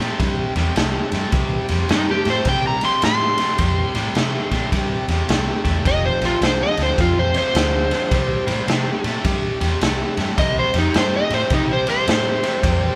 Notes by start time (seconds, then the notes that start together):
Already playing: C6
0.00 A#2 C3 A3, snare
0.20 G2 C3 G3, kick, snare, ride
0.56 E2 C3 G3, snare, ride
0.76 C2 C3 A3, snare, ride
1.12 G2 C3 A3, snare, ride
1.32 C2 C3 G3, kick, snare, ride
1.69 F2 C3 G3, snare, ride
1.89 G2 C3 A3 D#4, snare, ride
2.11 G4
2.25 A2 C3 A3, snare, ride
2.30 C5
2.45 C3 G3 G5, kick, snare, ride
2.67 A#5
2.81 C3 G3, snare, ride
2.85 C6
3.02 A2 C3 A3 C6, snare, ride
3.38 C3 A3, snare, ride
3.58 F2 C3 G3, kick, snare, ride
3.95 A2 C3 G3, snare, ride
4.15 C3 A3, snare, ride
4.51 A#2 C3 A3, kick, snare, ride
4.72 G2 C3 G3, kick, snare, ride
5.08 E2 C3 G3, snare, ride
5.28 C2 C3 A3, snare, ride
5.64 E2 C3 A3, kick, snare, ride
5.85 F1 F2 C3 D#5, kick, snare, ride
6.06 C5
6.21 A#1 F2 C3, snare, ride
6.25 F4
6.41 C2 F2 D3 C5, snare, ride
6.63 D#5
6.77 D2 F2 D3, snare, ride
6.83 C5
6.98 F2 C3 F4, kick, snare, ride
7.19 C5
7.34 F2 C3 C5, snare, ride
7.54 D2 F2 D3, snare, ride
7.90 F2 D3, snare, ride
8.11 C2 C3 G3, kick, snare, ride
8.47 A2 C3 G3, snare, ride
8.67 C3 A3, snare, ride
9.04 A#2 C3 A3, snare, ride
9.24 G2 C3 G3, kick, snare, ride
9.60 E2 C3 G3, snare, ride
9.81 C2 C3 A3, snare, ride
10.17 G2 C3 A3, snare, ride
10.38 C2 C3 G3 D#5, kick, snare, ride
10.59 C5
10.74 F2 C3 G3, snare, ride
10.78 D#4
10.94 G2 C3 A3 C5, snare, ride
11.16 D#5
11.30 A2 C3 A3 C5, snare, ride
11.50 C3 G3 D#4, kick, snare, ride
11.73 C5
11.86 C3 G3 C5, snare, ride
12.07 A2 C3 A3, snare, ride
12.43 C3 A3, snare, ride
12.63 F2 C3 G3, kick, snare, ride